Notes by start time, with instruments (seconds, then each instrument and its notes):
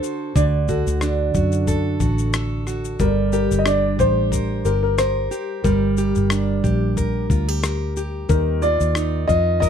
Already playing: steel-string acoustic guitar D3 D4 A4, upright piano C5
0.03 steel-string acoustic guitar F#4, shaker
0.35 fingered electric bass D2, steel-string acoustic guitar D3, upright piano D5, kick, shaker
0.68 steel-string acoustic guitar F#4, upright piano A4, kick, shaker
0.87 fingered electric bass D2, shaker
1.01 steel-string acoustic guitar D4, cross-stick, shaker
1.35 fingered electric bass F#2, steel-string acoustic guitar F#4, kick, shaker
1.52 shaker
1.67 steel-string acoustic guitar A4, kick, shaker
2.00 fingered electric bass A1, steel-string acoustic guitar F#4, kick, shaker
2.18 shaker
2.33 steel-string acoustic guitar A4, cross-stick, shaker
2.67 steel-string acoustic guitar F#4, cross-stick, shaker
2.85 shaker
3.00 fingered electric bass G1, steel-string acoustic guitar G3, upright piano A#4, kick, shaker
3.33 steel-string acoustic guitar G4, upright piano A#4, shaker
3.51 fingered electric bass G1, shaker
3.59 upright piano D#5
3.66 steel-string acoustic guitar D4, upright piano D5, cross-stick, shaker
3.99 fingered electric bass A1, steel-string acoustic guitar G4, upright piano C5, kick, shaker
4.32 steel-string acoustic guitar A#4, kick, shaker
4.65 fingered electric bass G1, steel-string acoustic guitar G4, upright piano A#4, shaker
4.83 upright piano A#4
4.98 steel-string acoustic guitar A#4, upright piano C5, cross-stick, shaker
5.31 steel-string acoustic guitar G4, shaker
5.64 fingered electric bass G1, steel-string acoustic guitar G3, upright piano A#4, kick, shaker
5.97 steel-string acoustic guitar G4, shaker
6.15 fingered electric bass G1, shaker
6.30 steel-string acoustic guitar D4, cross-stick, shaker
6.64 fingered electric bass A#1, steel-string acoustic guitar G4, kick, shaker
6.97 steel-string acoustic guitar A#4, kick, shaker
7.30 fingered electric bass D2, steel-string acoustic guitar F4, kick, shaker
7.49 steel-string acoustic guitar G4
7.63 steel-string acoustic guitar A#4, cross-stick, shaker
7.97 steel-string acoustic guitar G4, shaker
8.29 fingered electric bass D#2, steel-string acoustic guitar D#3, upright piano A#4, kick, shaker
8.62 steel-string acoustic guitar F4, upright piano D5, shaker
8.81 fingered electric bass D#2, shaker
8.95 steel-string acoustic guitar D#4, cross-stick, shaker
9.28 fingered electric bass F2, steel-string acoustic guitar F4, upright piano D#5, kick, shaker
9.60 steel-string acoustic guitar A#4, upright piano D#5, kick, shaker